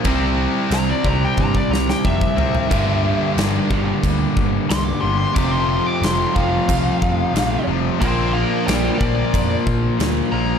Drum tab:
CC |x---x-----------|x---x---x---x---|x---x---x---x---|x---x---x---x---|
SD |----o-----oo----|----o-------o---|----o-------o---|----o-------o---|
T1 |--------o-------|----------------|----------------|----------------|
FT |--------------oo|----------------|----------------|----------------|
BD |o-----o-oo--oo--|o-----o-o-o-----|o-----o-o-o-----|o-----o-o-o-----|